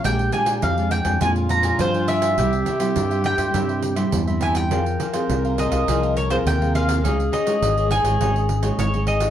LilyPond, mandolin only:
\new Staff \with { instrumentName = "Mandolin" } { \time 4/4 \key f \minor \tempo 4 = 103 g''8 aes''8 f''8 g''8 aes''8 bes''8 c''8 e''8~ | e''4. g''2 aes''16 g''16~ | g''4. ees''4 des''16 c''16 g''8 f''8~ | f''8 ees''4 aes''4. des''8 ees''8 | }